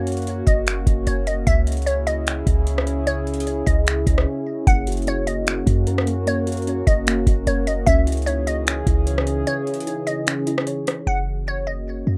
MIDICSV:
0, 0, Header, 1, 6, 480
1, 0, Start_track
1, 0, Tempo, 400000
1, 1764, Time_signature, 4, 2, 24, 8
1, 14612, End_track
2, 0, Start_track
2, 0, Title_t, "Synth pluck"
2, 0, Program_c, 0, 84
2, 0, Note_on_c, 0, 73, 90
2, 526, Note_off_c, 0, 73, 0
2, 560, Note_on_c, 0, 75, 94
2, 1239, Note_off_c, 0, 75, 0
2, 1285, Note_on_c, 0, 73, 84
2, 1513, Note_off_c, 0, 73, 0
2, 1525, Note_on_c, 0, 75, 85
2, 1753, Note_off_c, 0, 75, 0
2, 1761, Note_on_c, 0, 76, 113
2, 2214, Note_off_c, 0, 76, 0
2, 2238, Note_on_c, 0, 73, 86
2, 2469, Note_off_c, 0, 73, 0
2, 2482, Note_on_c, 0, 75, 94
2, 3635, Note_off_c, 0, 75, 0
2, 3683, Note_on_c, 0, 73, 105
2, 4360, Note_off_c, 0, 73, 0
2, 4398, Note_on_c, 0, 75, 83
2, 4629, Note_off_c, 0, 75, 0
2, 5605, Note_on_c, 0, 78, 105
2, 6056, Note_off_c, 0, 78, 0
2, 6096, Note_on_c, 0, 73, 98
2, 6318, Note_off_c, 0, 73, 0
2, 6324, Note_on_c, 0, 75, 76
2, 7476, Note_off_c, 0, 75, 0
2, 7531, Note_on_c, 0, 73, 94
2, 8205, Note_off_c, 0, 73, 0
2, 8243, Note_on_c, 0, 75, 91
2, 8921, Note_off_c, 0, 75, 0
2, 8966, Note_on_c, 0, 73, 89
2, 9193, Note_off_c, 0, 73, 0
2, 9205, Note_on_c, 0, 75, 84
2, 9433, Note_off_c, 0, 75, 0
2, 9438, Note_on_c, 0, 76, 116
2, 9892, Note_off_c, 0, 76, 0
2, 9917, Note_on_c, 0, 73, 82
2, 10148, Note_off_c, 0, 73, 0
2, 10164, Note_on_c, 0, 75, 89
2, 11316, Note_off_c, 0, 75, 0
2, 11365, Note_on_c, 0, 73, 105
2, 12042, Note_off_c, 0, 73, 0
2, 12082, Note_on_c, 0, 75, 82
2, 12311, Note_off_c, 0, 75, 0
2, 13285, Note_on_c, 0, 78, 99
2, 13736, Note_off_c, 0, 78, 0
2, 13775, Note_on_c, 0, 73, 93
2, 13998, Note_off_c, 0, 73, 0
2, 14003, Note_on_c, 0, 75, 78
2, 14612, Note_off_c, 0, 75, 0
2, 14612, End_track
3, 0, Start_track
3, 0, Title_t, "Synth keys"
3, 0, Program_c, 1, 88
3, 5599, Note_on_c, 1, 58, 92
3, 5851, Note_on_c, 1, 66, 83
3, 6085, Note_on_c, 1, 61, 92
3, 6551, Note_off_c, 1, 58, 0
3, 6566, Note_on_c, 1, 58, 92
3, 6781, Note_off_c, 1, 66, 0
3, 6796, Note_on_c, 1, 66, 84
3, 7048, Note_on_c, 1, 70, 94
3, 7269, Note_off_c, 1, 58, 0
3, 7283, Note_on_c, 1, 58, 79
3, 7505, Note_off_c, 1, 58, 0
3, 7519, Note_on_c, 1, 58, 92
3, 7525, Note_off_c, 1, 61, 0
3, 7746, Note_off_c, 1, 66, 0
3, 7761, Note_on_c, 1, 66, 85
3, 8003, Note_on_c, 1, 61, 91
3, 8470, Note_off_c, 1, 58, 0
3, 8485, Note_on_c, 1, 58, 87
3, 8486, Note_off_c, 1, 70, 0
3, 8714, Note_off_c, 1, 66, 0
3, 8728, Note_on_c, 1, 66, 78
3, 8959, Note_on_c, 1, 70, 93
3, 9192, Note_off_c, 1, 58, 0
3, 9206, Note_on_c, 1, 58, 70
3, 9434, Note_off_c, 1, 61, 0
3, 9442, Note_off_c, 1, 70, 0
3, 9445, Note_off_c, 1, 58, 0
3, 9446, Note_off_c, 1, 66, 0
3, 9448, Note_on_c, 1, 61, 97
3, 9676, Note_on_c, 1, 64, 85
3, 9928, Note_on_c, 1, 63, 86
3, 10391, Note_off_c, 1, 61, 0
3, 10405, Note_on_c, 1, 61, 84
3, 10629, Note_off_c, 1, 64, 0
3, 10643, Note_on_c, 1, 64, 84
3, 10879, Note_on_c, 1, 73, 93
3, 11106, Note_off_c, 1, 61, 0
3, 11121, Note_on_c, 1, 61, 78
3, 11348, Note_off_c, 1, 61, 0
3, 11362, Note_on_c, 1, 61, 91
3, 11367, Note_off_c, 1, 63, 0
3, 11592, Note_off_c, 1, 64, 0
3, 11607, Note_on_c, 1, 64, 82
3, 11843, Note_on_c, 1, 63, 82
3, 12309, Note_off_c, 1, 61, 0
3, 12322, Note_off_c, 1, 73, 0
3, 12324, Note_on_c, 1, 61, 98
3, 12550, Note_off_c, 1, 64, 0
3, 12565, Note_on_c, 1, 64, 88
3, 12807, Note_on_c, 1, 73, 94
3, 13033, Note_off_c, 1, 61, 0
3, 13047, Note_on_c, 1, 61, 73
3, 13284, Note_off_c, 1, 63, 0
3, 13285, Note_off_c, 1, 64, 0
3, 13286, Note_off_c, 1, 61, 0
3, 13286, Note_off_c, 1, 73, 0
3, 14612, End_track
4, 0, Start_track
4, 0, Title_t, "Ambient pad"
4, 0, Program_c, 2, 92
4, 0, Note_on_c, 2, 58, 84
4, 0, Note_on_c, 2, 61, 77
4, 0, Note_on_c, 2, 66, 86
4, 1725, Note_off_c, 2, 58, 0
4, 1726, Note_off_c, 2, 66, 0
4, 1761, Note_on_c, 2, 64, 75
4, 1762, Note_on_c, 2, 49, 81
4, 1762, Note_on_c, 2, 68, 88
4, 5564, Note_off_c, 2, 64, 0
4, 5565, Note_off_c, 2, 49, 0
4, 5565, Note_off_c, 2, 68, 0
4, 5604, Note_on_c, 2, 58, 82
4, 5606, Note_on_c, 2, 66, 91
4, 9396, Note_off_c, 2, 61, 0
4, 9406, Note_off_c, 2, 58, 0
4, 9407, Note_off_c, 2, 66, 0
4, 9443, Note_on_c, 2, 52, 75
4, 9443, Note_on_c, 2, 68, 91
4, 9444, Note_on_c, 2, 49, 81
4, 9444, Note_on_c, 2, 61, 74
4, 13245, Note_off_c, 2, 52, 0
4, 13245, Note_off_c, 2, 68, 0
4, 13246, Note_off_c, 2, 49, 0
4, 13246, Note_off_c, 2, 61, 0
4, 13286, Note_on_c, 2, 61, 72
4, 13287, Note_on_c, 2, 58, 82
4, 13287, Note_on_c, 2, 66, 87
4, 14612, Note_off_c, 2, 58, 0
4, 14612, Note_off_c, 2, 61, 0
4, 14612, Note_off_c, 2, 66, 0
4, 14612, End_track
5, 0, Start_track
5, 0, Title_t, "808-style bass"
5, 0, Program_c, 3, 38
5, 0, Note_on_c, 3, 42, 112
5, 514, Note_off_c, 3, 42, 0
5, 565, Note_on_c, 3, 30, 104
5, 1026, Note_off_c, 3, 30, 0
5, 1041, Note_on_c, 3, 30, 108
5, 1273, Note_off_c, 3, 30, 0
5, 1284, Note_on_c, 3, 30, 109
5, 1745, Note_off_c, 3, 30, 0
5, 1764, Note_on_c, 3, 37, 116
5, 2916, Note_off_c, 3, 37, 0
5, 2961, Note_on_c, 3, 37, 110
5, 4355, Note_off_c, 3, 37, 0
5, 4404, Note_on_c, 3, 37, 104
5, 4865, Note_off_c, 3, 37, 0
5, 4881, Note_on_c, 3, 37, 109
5, 5113, Note_off_c, 3, 37, 0
5, 5604, Note_on_c, 3, 30, 117
5, 6756, Note_off_c, 3, 30, 0
5, 6801, Note_on_c, 3, 42, 104
5, 8195, Note_off_c, 3, 42, 0
5, 8245, Note_on_c, 3, 30, 104
5, 8706, Note_off_c, 3, 30, 0
5, 8720, Note_on_c, 3, 30, 107
5, 8953, Note_off_c, 3, 30, 0
5, 8964, Note_on_c, 3, 30, 108
5, 9425, Note_off_c, 3, 30, 0
5, 9444, Note_on_c, 3, 37, 116
5, 10596, Note_off_c, 3, 37, 0
5, 10640, Note_on_c, 3, 37, 106
5, 11333, Note_off_c, 3, 37, 0
5, 13282, Note_on_c, 3, 30, 111
5, 14435, Note_off_c, 3, 30, 0
5, 14484, Note_on_c, 3, 42, 101
5, 14612, Note_off_c, 3, 42, 0
5, 14612, End_track
6, 0, Start_track
6, 0, Title_t, "Drums"
6, 83, Note_on_c, 9, 42, 73
6, 144, Note_off_c, 9, 42, 0
6, 144, Note_on_c, 9, 42, 61
6, 203, Note_off_c, 9, 42, 0
6, 203, Note_on_c, 9, 42, 52
6, 264, Note_off_c, 9, 42, 0
6, 264, Note_on_c, 9, 42, 45
6, 325, Note_off_c, 9, 42, 0
6, 325, Note_on_c, 9, 42, 76
6, 445, Note_off_c, 9, 42, 0
6, 564, Note_on_c, 9, 36, 99
6, 565, Note_on_c, 9, 42, 82
6, 684, Note_off_c, 9, 36, 0
6, 685, Note_off_c, 9, 42, 0
6, 800, Note_on_c, 9, 42, 86
6, 814, Note_on_c, 9, 26, 118
6, 920, Note_off_c, 9, 42, 0
6, 934, Note_off_c, 9, 26, 0
6, 1040, Note_on_c, 9, 36, 95
6, 1042, Note_on_c, 9, 42, 82
6, 1160, Note_off_c, 9, 36, 0
6, 1162, Note_off_c, 9, 42, 0
6, 1281, Note_on_c, 9, 42, 84
6, 1401, Note_off_c, 9, 42, 0
6, 1523, Note_on_c, 9, 42, 74
6, 1643, Note_off_c, 9, 42, 0
6, 1763, Note_on_c, 9, 42, 79
6, 1764, Note_on_c, 9, 36, 114
6, 1883, Note_off_c, 9, 42, 0
6, 1884, Note_off_c, 9, 36, 0
6, 2005, Note_on_c, 9, 42, 75
6, 2064, Note_off_c, 9, 42, 0
6, 2064, Note_on_c, 9, 42, 66
6, 2124, Note_off_c, 9, 42, 0
6, 2124, Note_on_c, 9, 42, 55
6, 2184, Note_off_c, 9, 42, 0
6, 2184, Note_on_c, 9, 42, 46
6, 2244, Note_off_c, 9, 42, 0
6, 2244, Note_on_c, 9, 42, 77
6, 2364, Note_off_c, 9, 42, 0
6, 2485, Note_on_c, 9, 42, 80
6, 2605, Note_off_c, 9, 42, 0
6, 2721, Note_on_c, 9, 42, 84
6, 2734, Note_on_c, 9, 26, 127
6, 2841, Note_off_c, 9, 42, 0
6, 2854, Note_off_c, 9, 26, 0
6, 2961, Note_on_c, 9, 36, 92
6, 2962, Note_on_c, 9, 42, 83
6, 3081, Note_off_c, 9, 36, 0
6, 3082, Note_off_c, 9, 42, 0
6, 3201, Note_on_c, 9, 42, 79
6, 3321, Note_off_c, 9, 42, 0
6, 3336, Note_on_c, 9, 37, 96
6, 3443, Note_on_c, 9, 42, 76
6, 3456, Note_off_c, 9, 37, 0
6, 3563, Note_off_c, 9, 42, 0
6, 3684, Note_on_c, 9, 42, 80
6, 3804, Note_off_c, 9, 42, 0
6, 3924, Note_on_c, 9, 42, 46
6, 4003, Note_off_c, 9, 42, 0
6, 4003, Note_on_c, 9, 42, 59
6, 4083, Note_off_c, 9, 42, 0
6, 4083, Note_on_c, 9, 42, 78
6, 4163, Note_off_c, 9, 42, 0
6, 4163, Note_on_c, 9, 42, 76
6, 4283, Note_off_c, 9, 42, 0
6, 4404, Note_on_c, 9, 36, 99
6, 4405, Note_on_c, 9, 42, 81
6, 4524, Note_off_c, 9, 36, 0
6, 4525, Note_off_c, 9, 42, 0
6, 4641, Note_on_c, 9, 42, 81
6, 4654, Note_on_c, 9, 26, 121
6, 4761, Note_off_c, 9, 42, 0
6, 4774, Note_off_c, 9, 26, 0
6, 4881, Note_on_c, 9, 36, 88
6, 4883, Note_on_c, 9, 42, 86
6, 5001, Note_off_c, 9, 36, 0
6, 5003, Note_off_c, 9, 42, 0
6, 5014, Note_on_c, 9, 37, 96
6, 5134, Note_off_c, 9, 37, 0
6, 5604, Note_on_c, 9, 36, 110
6, 5605, Note_on_c, 9, 42, 76
6, 5724, Note_off_c, 9, 36, 0
6, 5725, Note_off_c, 9, 42, 0
6, 5845, Note_on_c, 9, 42, 74
6, 5905, Note_off_c, 9, 42, 0
6, 5905, Note_on_c, 9, 42, 67
6, 5965, Note_off_c, 9, 42, 0
6, 5965, Note_on_c, 9, 42, 56
6, 6025, Note_off_c, 9, 42, 0
6, 6025, Note_on_c, 9, 42, 47
6, 6086, Note_off_c, 9, 42, 0
6, 6086, Note_on_c, 9, 42, 72
6, 6206, Note_off_c, 9, 42, 0
6, 6327, Note_on_c, 9, 42, 82
6, 6447, Note_off_c, 9, 42, 0
6, 6561, Note_on_c, 9, 42, 83
6, 6574, Note_on_c, 9, 26, 124
6, 6681, Note_off_c, 9, 42, 0
6, 6694, Note_off_c, 9, 26, 0
6, 6801, Note_on_c, 9, 36, 93
6, 6805, Note_on_c, 9, 42, 88
6, 6921, Note_off_c, 9, 36, 0
6, 6925, Note_off_c, 9, 42, 0
6, 7043, Note_on_c, 9, 42, 82
6, 7163, Note_off_c, 9, 42, 0
6, 7178, Note_on_c, 9, 37, 97
6, 7285, Note_on_c, 9, 42, 82
6, 7298, Note_off_c, 9, 37, 0
6, 7405, Note_off_c, 9, 42, 0
6, 7525, Note_on_c, 9, 42, 79
6, 7645, Note_off_c, 9, 42, 0
6, 7765, Note_on_c, 9, 42, 74
6, 7825, Note_off_c, 9, 42, 0
6, 7825, Note_on_c, 9, 42, 64
6, 7886, Note_off_c, 9, 42, 0
6, 7886, Note_on_c, 9, 42, 55
6, 7946, Note_off_c, 9, 42, 0
6, 7946, Note_on_c, 9, 42, 44
6, 8008, Note_off_c, 9, 42, 0
6, 8008, Note_on_c, 9, 42, 74
6, 8128, Note_off_c, 9, 42, 0
6, 8244, Note_on_c, 9, 36, 98
6, 8247, Note_on_c, 9, 42, 85
6, 8364, Note_off_c, 9, 36, 0
6, 8367, Note_off_c, 9, 42, 0
6, 8482, Note_on_c, 9, 42, 82
6, 8495, Note_on_c, 9, 26, 124
6, 8602, Note_off_c, 9, 42, 0
6, 8615, Note_off_c, 9, 26, 0
6, 8721, Note_on_c, 9, 36, 90
6, 8723, Note_on_c, 9, 42, 88
6, 8841, Note_off_c, 9, 36, 0
6, 8843, Note_off_c, 9, 42, 0
6, 8963, Note_on_c, 9, 42, 82
6, 9083, Note_off_c, 9, 42, 0
6, 9206, Note_on_c, 9, 42, 78
6, 9326, Note_off_c, 9, 42, 0
6, 9444, Note_on_c, 9, 36, 111
6, 9446, Note_on_c, 9, 42, 79
6, 9564, Note_off_c, 9, 36, 0
6, 9566, Note_off_c, 9, 42, 0
6, 9686, Note_on_c, 9, 42, 75
6, 9746, Note_off_c, 9, 42, 0
6, 9746, Note_on_c, 9, 42, 67
6, 9806, Note_off_c, 9, 42, 0
6, 9806, Note_on_c, 9, 42, 55
6, 9865, Note_off_c, 9, 42, 0
6, 9865, Note_on_c, 9, 42, 46
6, 9926, Note_off_c, 9, 42, 0
6, 9926, Note_on_c, 9, 42, 79
6, 10046, Note_off_c, 9, 42, 0
6, 10167, Note_on_c, 9, 42, 78
6, 10287, Note_off_c, 9, 42, 0
6, 10402, Note_on_c, 9, 42, 81
6, 10415, Note_on_c, 9, 26, 121
6, 10522, Note_off_c, 9, 42, 0
6, 10535, Note_off_c, 9, 26, 0
6, 10640, Note_on_c, 9, 36, 91
6, 10642, Note_on_c, 9, 42, 87
6, 10760, Note_off_c, 9, 36, 0
6, 10762, Note_off_c, 9, 42, 0
6, 10882, Note_on_c, 9, 42, 80
6, 11002, Note_off_c, 9, 42, 0
6, 11016, Note_on_c, 9, 37, 95
6, 11122, Note_on_c, 9, 42, 76
6, 11136, Note_off_c, 9, 37, 0
6, 11242, Note_off_c, 9, 42, 0
6, 11364, Note_on_c, 9, 42, 81
6, 11484, Note_off_c, 9, 42, 0
6, 11605, Note_on_c, 9, 42, 45
6, 11684, Note_off_c, 9, 42, 0
6, 11684, Note_on_c, 9, 42, 60
6, 11765, Note_off_c, 9, 42, 0
6, 11765, Note_on_c, 9, 42, 80
6, 11845, Note_off_c, 9, 42, 0
6, 11845, Note_on_c, 9, 42, 74
6, 11965, Note_off_c, 9, 42, 0
6, 12087, Note_on_c, 9, 42, 81
6, 12207, Note_off_c, 9, 42, 0
6, 12321, Note_on_c, 9, 42, 81
6, 12335, Note_on_c, 9, 26, 125
6, 12441, Note_off_c, 9, 42, 0
6, 12455, Note_off_c, 9, 26, 0
6, 12563, Note_on_c, 9, 42, 83
6, 12683, Note_off_c, 9, 42, 0
6, 12694, Note_on_c, 9, 37, 99
6, 12802, Note_on_c, 9, 42, 81
6, 12814, Note_off_c, 9, 37, 0
6, 12922, Note_off_c, 9, 42, 0
6, 13046, Note_on_c, 9, 42, 81
6, 13055, Note_on_c, 9, 37, 99
6, 13166, Note_off_c, 9, 42, 0
6, 13175, Note_off_c, 9, 37, 0
6, 14612, End_track
0, 0, End_of_file